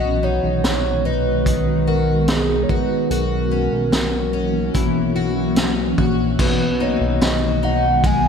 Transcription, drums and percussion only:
0.64 snare, closed hi-hat
1.46 kick, closed hi-hat
2.28 snare, closed hi-hat
2.69 kick
3.11 closed hi-hat
3.92 snare, closed hi-hat
4.75 kick, closed hi-hat
5.56 snare, closed hi-hat
5.98 kick
6.39 kick, crash
7.21 snare, ride, tambourine
8.04 kick, ride

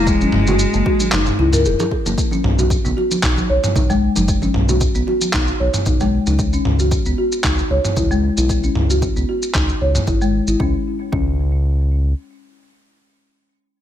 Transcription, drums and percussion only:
0.07 kick, shaker
0.21 high conga, shaker
0.32 mid tom
0.47 low conga, shaker
0.59 shaker
0.74 shaker
0.86 kick, muted conga
1.00 high conga, shaker
1.12 clap, muted conga, shaker
1.26 mid tom, shaker
1.39 muted conga
1.53 mid tom, shaker
1.65 shaker
1.80 muted conga, high conga, shaker
1.91 kick
2.06 muted conga, shaker
2.18 kick, shaker
2.31 high conga, shaker
2.44 mid tom
2.59 low conga, shaker
2.70 kick, shaker
2.85 low conga, shaker
2.98 muted conga
3.11 high conga, shaker
3.23 kick, clap, shaker
3.37 high conga, shaker
3.63 mid tom, muted conga, shaker
3.76 kick, low conga, shaker
3.90 muted conga, shaker
4.16 muted conga, high conga, shaker
4.28 kick, shaker
4.42 high conga, shaker
4.54 mid tom
4.69 low conga, shaker
4.81 kick, shaker
4.95 shaker
5.08 muted conga
5.21 high conga, shaker
5.33 kick, clap, muted conga, shaker
5.48 shaker
5.74 mid tom, shaker
5.86 kick, shaker
6.00 muted conga, shaker
6.26 muted conga, shaker
6.39 kick, shaker
6.53 shaker
6.65 mid tom
6.79 shaker
6.91 kick, shaker
7.06 shaker
7.32 shaker
7.44 kick, clap, shaker
7.58 shaker
7.85 mid tom, shaker
7.97 kick, shaker
8.11 shaker
8.37 shaker
8.49 kick, shaker
8.63 shaker
8.75 mid tom
8.90 shaker
9.02 kick, shaker
9.16 shaker
9.42 shaker
9.54 kick, clap, shaker
9.69 shaker
9.95 mid tom, shaker
10.07 kick, shaker
10.21 shaker
10.47 shaker
10.60 kick
11.13 kick

